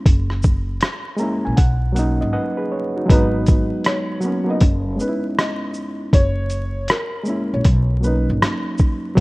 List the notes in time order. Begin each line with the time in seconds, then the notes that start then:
0.06 F#1, kick, closed hi-hat
0.30 cross-stick
0.43 kick, shaker
0.81 cross-stick, closed hi-hat
1.16 G#3 A#3 A#5, shaker
1.21 C#4 E4
1.45 A#1 G#5
1.57 B1 F#5, kick, closed hi-hat
1.92 F#3 A#3 F#5, closed hi-hat, shaker
1.97 C#4 D#4
2.21 G#1 D#5
2.33 B4 D#5 F#5
2.58 G#4 B4
2.72 C#5
2.96 D#4 F#4
3.06 F#3 G#3, kick
3.10 G#1 B3 D#4 B4, closed hi-hat
3.46 kick, closed hi-hat, shaker
3.84 C#5, cross-stick, closed hi-hat
4.21 F#3 A#3, shaker
4.25 B3 C#4
4.45 F#3 A#3
4.49 B3 D#4 D#5
4.61 F#1, kick, closed hi-hat
4.96 G#3 B3, shaker
5.00 C#4 D#4 B4
5.09 E4
5.38 D#5, cross-stick, closed hi-hat
5.74 shaker
6.13 F#1 C#5, kick, closed hi-hat
6.50 closed hi-hat, shaker
6.88 A#4, cross-stick, closed hi-hat
7.23 G#3 A#3, shaker
7.28 C#4 E4
7.53 A#1 C#5
7.65 B1, kick, closed hi-hat
8.01 F#3 A#3 B4, shaker
8.05 C#4 D#4
8.30 G#1
8.42 cross-stick, closed hi-hat
8.78 kick, shaker
9.15 F#3 A#3, kick